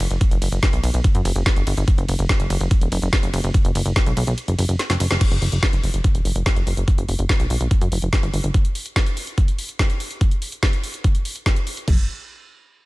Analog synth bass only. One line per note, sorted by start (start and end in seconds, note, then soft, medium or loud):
0.00 0.07 F#1 loud
0.11 0.17 F#1 medium
0.31 0.38 F#1 medium
0.42 0.49 F#1 loud
0.52 0.59 F#1 medium
0.73 0.80 B1 medium
0.84 0.90 B1 loud
0.94 1.01 B1 medium
1.15 1.22 F#2 medium
1.25 1.32 F#1 loud
1.36 1.42 F#1 loud
1.56 1.63 G1 medium
1.67 1.74 G1 loud
1.77 1.84 G1 medium
1.98 2.05 F#1 medium
2.09 2.15 F#1 loud
2.19 2.26 F#1 medium
2.40 2.47 F#1 medium
2.50 2.57 F#1 loud
2.61 2.67 F#1 medium
2.81 2.88 E1 medium
2.92 2.99 F#1 loud
3.02 3.09 F#1 loud
3.23 3.30 F#1 medium
3.34 3.40 F#1 loud
3.44 3.51 F#1 medium
3.65 3.72 F#1 medium
3.75 3.82 F#1 medium
3.86 3.92 F#1 medium
4.06 4.13 B1 medium
4.17 4.24 B1 loud
4.27 4.34 B1 medium
4.48 4.55 F#1 medium
4.59 4.65 F#1 loud
4.69 4.76 F#1 medium
4.90 4.97 F#1 medium
5.00 5.07 F#1 loud
5.11 5.17 F#1 medium
5.31 5.38 F#1 medium
5.42 5.49 F#1 medium
5.52 5.59 F#1 medium
5.73 5.80 F#1 medium
5.84 5.90 F#1 loud
5.94 6.01 F#1 medium
6.15 6.22 E1 medium
6.25 6.32 F#1 loud
6.36 6.42 F#1 medium
6.56 6.63 F#1 medium
6.67 6.74 F#1 loud
6.77 6.84 F#1 medium
6.98 7.05 F#1 medium
7.09 7.15 F#1 medium
7.19 7.26 F#1 medium
7.40 7.47 B1 medium
7.50 7.57 B1 loud
7.61 7.67 B1 medium
7.81 7.88 F#2 medium
7.92 7.99 F#1 loud
8.02 8.09 F#1 medium
8.23 8.30 G1 medium
8.34 8.40 G1 loud
8.44 8.51 G1 medium
11.88 12.07 F#1 loud